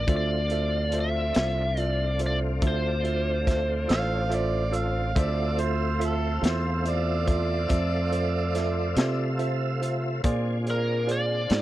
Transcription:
Already playing: lead electric guitar D5
0.07 fingered electric bass D2, tonewheel organ A3 C4 D4 F4, tine electric piano F4 A4 C5 E5, kick, closed hi-hat
0.17 lead electric guitar D5
0.50 tine electric piano F4 A4 C5 E5, closed hi-hat
0.92 tine electric piano F4 A4 C5 E5, closed hi-hat
1.00 lead electric guitar E5
1.34 fingered electric bass C2, tine electric piano F4 A4 C5 E5, snare, closed hi-hat
1.77 tine electric piano F4 A4 C5 E5, closed hi-hat
1.81 lead electric guitar D5
2.19 tine electric piano F4 A4 C5 E5, closed hi-hat
2.26 lead electric guitar D5
2.62 fingered electric bass D2, tine electric piano F4 A4 C5 E5, kick, closed hi-hat
2.68 lead electric guitar C5
3.04 tine electric piano F4 A4 C5 E5, closed hi-hat
3.46 tine electric piano F4 A4 C5 E5, kick, snare, closed hi-hat
3.88 fingered electric bass A1, tine electric piano F4 A4 C5 E6, harmonica F5, snare, closed hi-hat
4.30 tine electric piano F4 A4 C5 E5, closed hi-hat
4.35 harmonica D5
4.72 tine electric piano F4 A4 C5 E6, harmonica F5, closed hi-hat
5.15 fingered electric bass D2, tonewheel organ A3 C4 F4 E5, tine electric piano F4 A4 C5 E5, harmonica D5, kick, closed hi-hat
5.57 tine electric piano F4 A4 C5 E5, harmonica C5, closed hi-hat
6.00 tine electric piano F4 A4 C5 E5, closed hi-hat
6.05 harmonica A4
6.42 fingered electric bass E2, tine electric piano F4 A4 C5 E5, closed hi-hat
6.46 harmonica C5, snare
6.85 tine electric piano F4 A4 C5 E5, harmonica D5, closed hi-hat
7.27 tine electric piano F4 A4 C5 E5, kick, closed hi-hat
7.69 fingered electric bass F2, tine electric piano F4 A4 C5 E5, kick, closed hi-hat
8.12 tine electric piano F4 A4 C5 E5, closed hi-hat
8.54 tine electric piano F4 A4 C5 E5, snare, closed hi-hat
8.97 fingered electric bass C3, tine electric piano F4 A4 C5 E5, snare, closed hi-hat
9.39 tine electric piano F4 A4 C5 E5, closed hi-hat
9.81 tine electric piano F4 A4 C5 E5, closed hi-hat
10.23 fingered electric bass A#2, tonewheel organ C4 D4 F4 G#4, tine electric piano F4 G#4 C5 D5, kick, closed hi-hat
10.67 tine electric piano F4 G#4 C5 D5, lead electric guitar A#4, closed hi-hat
11.07 tine electric piano F4 G#4 C5 D5, closed hi-hat
11.11 lead electric guitar D5
11.50 fingered electric bass G#2, tine electric piano F4 G#4 C5 D5, snare, closed hi-hat

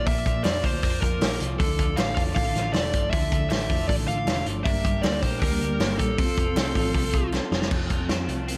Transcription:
Already playing: clean electric guitar F3 A#3, woodwind section A#4 D5 A5 D6
0.06 picked electric bass A#1, clean electric guitar A#2 D4, lead electric guitar E5, kick, hi-hat pedal, open hi-hat
0.25 picked electric bass A#1, clean electric guitar F3, kick, hi-hat pedal, open hi-hat
0.44 picked electric bass F2, clean electric guitar A#3, lead electric guitar D5, snare, clap, hi-hat pedal, open hi-hat
0.63 picked electric bass D2, clean electric guitar F3, lead electric guitar C5, kick, hi-hat pedal, open hi-hat
0.83 picked electric bass F2, clean electric guitar A#3, kick, clap, hi-hat pedal, open hi-hat
1.01 picked electric bass F2, clean electric guitar F3, lead electric guitar A#4, kick, hi-hat pedal, open hi-hat
1.22 picked electric bass A#1, clean electric guitar A#3, snare, clap, hi-hat pedal, open hi-hat
1.40 picked electric bass C2, clean electric guitar F3, hi-hat pedal, open hi-hat
1.59 picked electric bass D2, clean electric guitar D3 F3 D4 E4 A4, lead electric guitar A4, woodwind section A4 D5, kick, hi-hat pedal, open hi-hat
1.78 picked electric bass D2, clean electric guitar F3, kick, hi-hat pedal, open hi-hat
1.88 clean electric guitar D4 E4 A4
1.96 picked electric bass A1, clean electric guitar G3, lead electric guitar F5, snare, clap, hi-hat pedal, open hi-hat
2.08 clean electric guitar A3
2.15 picked electric bass F1, clean electric guitar F3 D4 E4, lead electric guitar F5, kick, hi-hat pedal, open hi-hat
2.19 clean electric guitar A4
2.35 picked electric bass A1, clean electric guitar A3, lead electric guitar F5, kick, hi-hat pedal, open hi-hat
2.45 clean electric guitar D3 F3 D4 E4 A4
2.55 picked electric bass A1, clean electric guitar F3, snare, hi-hat pedal, open hi-hat
2.73 picked electric bass E1, clean electric guitar A3, lead electric guitar D5, snare, clap, hi-hat pedal, open hi-hat
2.84 clean electric guitar D4 E4 A4
2.93 picked electric bass G1, clean electric guitar F3, kick, hi-hat pedal, open hi-hat
3.10 picked electric bass D2, clean electric guitar D3 F3 D4, lead electric guitar E5, kick, hi-hat pedal, open hi-hat
3.15 clean electric guitar E4 A4
3.32 picked electric bass D2, clean electric guitar F3, kick, hi-hat pedal, open hi-hat
3.41 clean electric guitar D4 E4 A4
3.49 picked electric bass A1, clean electric guitar A3, lead electric guitar E5, snare, clap, hi-hat pedal, open hi-hat
3.70 picked electric bass F1, clean electric guitar F3 D4 E4 A4, kick, hi-hat pedal, open hi-hat
3.88 picked electric bass A1, clean electric guitar A3, lead electric guitar D5, kick, hi-hat pedal, open hi-hat
3.99 clean electric guitar D3 F3 D4 E4 A4
4.08 picked electric bass A1, clean electric guitar F3, lead electric guitar F5, hi-hat pedal, open hi-hat
4.27 picked electric bass E1, clean electric guitar A3, snare, clap, hi-hat pedal, open hi-hat
4.37 clean electric guitar D4 E4 A4
4.46 picked electric bass G1, clean electric guitar F3, hi-hat pedal, open hi-hat
4.64 picked electric bass G1, clean electric guitar G2 G3 A#3 D4, woodwind section A#4 D5 G5 D6, lead electric guitar E5, kick, hi-hat pedal, open hi-hat
4.69 clean electric guitar A#4
4.84 picked electric bass G1, clean electric guitar G3, kick, hi-hat pedal, open hi-hat
4.94 clean electric guitar G3 A#3 D4 A#4
5.02 picked electric bass D2, clean electric guitar A#3, lead electric guitar D5, snare, clap, hi-hat pedal, open hi-hat
5.22 picked electric bass A#1, clean electric guitar G3 A#3 D4 A#4, lead electric guitar C5, kick, hi-hat pedal, open hi-hat
5.40 picked electric bass D2, clean electric guitar A#3, lead electric guitar A#4, kick, hi-hat pedal, open hi-hat
5.51 clean electric guitar G2 D3 G3 A#3 D4 A#4
5.61 picked electric bass D2, clean electric guitar G3, hi-hat pedal, open hi-hat
5.80 picked electric bass G1, clean electric guitar A#3, snare, clap, hi-hat pedal, open hi-hat
5.89 clean electric guitar G3 A#3 D4 A#4
5.98 picked electric bass A#1, clean electric guitar G3, lead electric guitar A4, kick, hi-hat pedal, open hi-hat
6.18 picked electric bass F1, clean electric guitar F2 F3 C4 F4 A4, woodwind section A4 C5 F5 C6, kick, hi-hat pedal, open hi-hat
6.37 picked electric bass F1, clean electric guitar F3, kick, hi-hat pedal, open hi-hat
6.47 clean electric guitar C4 F4 A4
6.56 picked electric bass C2, clean electric guitar A3, snare, clap, hi-hat pedal, open hi-hat
6.75 picked electric bass A1, clean electric guitar F3 C4 F4 A4, kick, hi-hat pedal, open hi-hat
6.94 picked electric bass C2, clean electric guitar G3, kick, hi-hat pedal, open hi-hat
7.04 clean electric guitar F3 A3 C4 F4 A4
7.14 picked electric bass C2, clean electric guitar F3, kick, hi-hat pedal, open hi-hat
7.33 clean electric guitar A3, snare, clap
7.42 clean electric guitar C4 F4 A4
7.52 picked electric bass F1, clean electric guitar F3, snare
7.62 snare
7.70 picked electric bass F1, clean electric guitar F2 F3 C4 F4 A4, kick, crash
7.90 picked electric bass F1, clean electric guitar F3, kick, closed hi-hat
7.99 clean electric guitar F3 C4 F4 A4
8.09 picked electric bass F2, clean electric guitar C4, snare, closed hi-hat
8.18 clean electric guitar F3 C4 F4 A4
8.28 picked electric bass C2, clean electric guitar A3, closed hi-hat
8.48 clean electric guitar C4, closed hi-hat

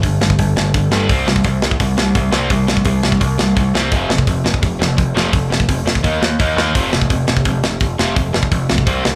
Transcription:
0.02 picked electric bass G1, distorted electric guitar G2 D3, kick, open hi-hat
0.20 picked electric bass G1, distorted electric guitar G2 D3, snare
0.30 kick
0.38 picked electric bass G1, distorted electric guitar G2 D3, kick, open hi-hat
0.56 picked electric bass G1, distorted electric guitar G2 D3, snare
0.74 picked electric bass G1, distorted electric guitar G2 D3, kick, open hi-hat
0.91 picked electric bass G1, distorted electric guitar G2 D3 G3, snare
1.09 picked electric bass C2, distorted electric guitar C3 G3 C4, kick, open hi-hat
1.26 picked electric bass C2, distorted electric guitar C3 G3, snare
1.36 kick
1.44 picked electric bass C2, distorted electric guitar C3 G3, kick, open hi-hat
1.62 picked electric bass C2, distorted electric guitar C3 G3, snare
1.71 kick
1.80 picked electric bass C2, distorted electric guitar C3 G3, kick, open hi-hat
1.97 picked electric bass C2, distorted electric guitar C3 G3, snare
2.15 picked electric bass C2, distorted electric guitar C3 G3, kick, open hi-hat
2.32 picked electric bass C2, distorted electric guitar C3 G3 C4, snare
2.50 picked electric bass C2, distorted electric guitar C3 G3, kick, open hi-hat
2.67 picked electric bass C2, distorted electric guitar C3 G3, snare
2.77 kick
2.85 picked electric bass C2, distorted electric guitar C3 G3, kick, open hi-hat
3.03 picked electric bass C2, distorted electric guitar C3 G3, snare
3.12 kick
3.20 picked electric bass C2, distorted electric guitar C3 G3, kick, open hi-hat
3.38 picked electric bass C2, distorted electric guitar C3 G3, snare
3.56 picked electric bass C2, distorted electric guitar C3 G3, kick, open hi-hat
3.75 picked electric bass C2, distorted electric guitar C3 G3 C4, snare
3.92 picked electric bass F1, distorted electric guitar F2 C3 F3, kick, open hi-hat
4.08 picked electric bass F1, distorted electric guitar F2 C3, snare
4.18 kick
4.27 picked electric bass F1, distorted electric guitar F2 C3, kick, open hi-hat
4.44 picked electric bass F1, distorted electric guitar F2 C3, snare
4.54 kick
4.62 picked electric bass F1, distorted electric guitar F2 C3, kick, open hi-hat
4.79 picked electric bass F1, distorted electric guitar F2 C3, snare
4.97 picked electric bass F1, distorted electric guitar F2 C3, kick, open hi-hat
5.14 picked electric bass F1, distorted electric guitar F2 C3 F3, snare
5.32 picked electric bass F1, distorted electric guitar F2 C3, kick, open hi-hat
5.49 picked electric bass F1, distorted electric guitar F2 C3, snare
5.60 kick
5.69 picked electric bass F1, distorted electric guitar F2 C3, kick, open hi-hat
5.84 picked electric bass F1, distorted electric guitar F2 C3, snare
5.95 kick
6.03 picked electric bass D#2, distorted electric guitar D#3 A#3 D#4, kick, open hi-hat
6.21 picked electric bass D#2, distorted electric guitar D#3 A#3, snare
6.39 picked electric bass D#2, distorted electric guitar D#3 A#3 D#4, kick, open hi-hat
6.56 picked electric bass D#2, distorted electric guitar D#3 A#3 D#4, snare
6.74 picked electric bass F1, distorted electric guitar F2 C3 F3, kick, open hi-hat
6.92 picked electric bass F1, distorted electric guitar F2 C3, snare
7.02 kick
7.10 picked electric bass F1, distorted electric guitar F2 C3, kick, open hi-hat
7.27 picked electric bass F1, distorted electric guitar F2 C3, snare
7.37 kick
7.45 picked electric bass F1, distorted electric guitar F2 C3, kick, open hi-hat
7.63 picked electric bass F1, distorted electric guitar F2 C3, snare
7.80 picked electric bass F1, distorted electric guitar F2 C3, kick, open hi-hat
7.98 picked electric bass F1, distorted electric guitar F2 C3 F3, snare
8.16 picked electric bass F1, distorted electric guitar F2 C3, kick, open hi-hat
8.33 picked electric bass F1, distorted electric guitar F2 C3, snare
8.43 kick
8.51 picked electric bass F1, distorted electric guitar F2 C3, kick, open hi-hat
8.69 picked electric bass B1, distorted electric guitar F2 C3, snare
8.78 kick
8.86 picked electric bass C2, distorted electric guitar C3 G3 C4, kick, open hi-hat
9.03 picked electric bass C2, distorted electric guitar C3 G3, snare

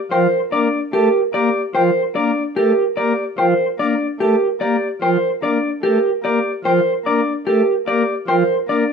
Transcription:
0.11 pipe organ F3, vibraphone A#4, clean electric guitar C5, flute G5
0.52 pipe organ A#3, vibraphone D4, clean electric guitar D5, flute D6
0.93 pipe organ A3, clean electric guitar G4, vibraphone A#4
1.34 pipe organ A#3, vibraphone G4, clean electric guitar D5
1.75 pipe organ F3, vibraphone A#4, clean electric guitar C5, flute G5
2.15 pipe organ A#3, vibraphone D4, clean electric guitar D5, flute D6
2.56 pipe organ A3, clean electric guitar G4, vibraphone A#4
2.97 pipe organ A#3, vibraphone G4, clean electric guitar D5
3.38 pipe organ F3, vibraphone A#4, clean electric guitar C5, flute G5
3.79 pipe organ A#3, vibraphone D4, clean electric guitar D5, flute D6
4.20 pipe organ A3, clean electric guitar G4, vibraphone A#4
4.61 pipe organ A#3, vibraphone G4, clean electric guitar D5
5.02 pipe organ F3, vibraphone A#4, clean electric guitar C5, flute G5
5.42 pipe organ A#3, vibraphone D4, clean electric guitar D5, flute D6
5.83 pipe organ A3, clean electric guitar G4, vibraphone A#4
6.24 pipe organ A#3, vibraphone G4, clean electric guitar D5
6.64 pipe organ F3, vibraphone A#4, clean electric guitar C5, flute G5
7.05 pipe organ A#3, vibraphone D4, clean electric guitar D5, flute D6
7.47 pipe organ A3, clean electric guitar G4, vibraphone A#4
7.87 pipe organ A#3, vibraphone G4, clean electric guitar D5
8.28 pipe organ F3, vibraphone A#4, clean electric guitar C5, flute G5
8.68 pipe organ A#3, vibraphone D4, clean electric guitar D5, flute D6

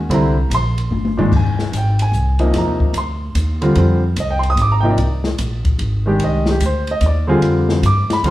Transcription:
0.09 upright bass C2, grand piano D3 G3 C4 E4, ride
0.14 grand piano A#5
0.50 upright bass A#1, hi-hat pedal, ride
0.55 grand piano C6
0.78 ride
0.91 upright bass G1, high tom
1.05 high tom
1.17 grand piano A#2 D#3 G#3 D4, floor tom
1.32 upright bass F1, kick, crash
1.36 grand piano G#5
1.59 snare
1.72 upright bass G#1, hi-hat pedal, ride
1.77 grand piano G5
1.99 grand piano G#5, ride
2.12 upright bass C2, hi-hat pedal
2.39 grand piano C3 F3 A#3 D#4, ride
2.53 upright bass F2, snare, ride
2.58 grand piano A#5
2.67 upright bass D#2
2.80 upright bass C2, kick
2.93 upright bass D2, hi-hat pedal, ride
2.98 grand piano C6
3.35 upright bass D#2, hi-hat pedal, ride
3.61 grand piano D3 G3 C4 F4, ride
3.75 upright bass F2, grand piano D3 G3 C4 F4, ride
4.16 upright bass C2, grand piano D#5, hi-hat pedal, ride
4.31 grand piano G5
4.39 grand piano C6, ride
4.50 grand piano D#6
4.56 upright bass G#1, hi-hat pedal, ride
4.62 grand piano D6
4.72 grand piano A#5
4.81 grand piano C3 F3 A#3 G5
4.85 grand piano D#4
4.91 grand piano D5
4.97 upright bass C2, ride
5.24 snare
5.38 upright bass A#1, hi-hat pedal, ride
5.65 kick, ride
5.79 upright bass G#1, ride
6.06 grand piano D#3 G#3 D4 G4
6.19 upright bass C2, ride
6.24 grand piano D#5
6.46 snare
6.51 grand piano G4
6.60 upright bass D2, hi-hat pedal, ride
6.66 grand piano C5
6.87 ride
6.91 grand piano D#5
7.01 upright bass D#2, hi-hat pedal, ride
7.06 grand piano D5
7.27 grand piano D3 G3 C4 F4 G#4
7.41 upright bass F2, ride
7.69 snare
7.82 upright bass G2, grand piano D6, hi-hat pedal, ride
8.09 grand piano B5, muted upright bass stroke, snare, ride
8.23 upright bass D#2, grand piano D3 G3 C4 F4, ride

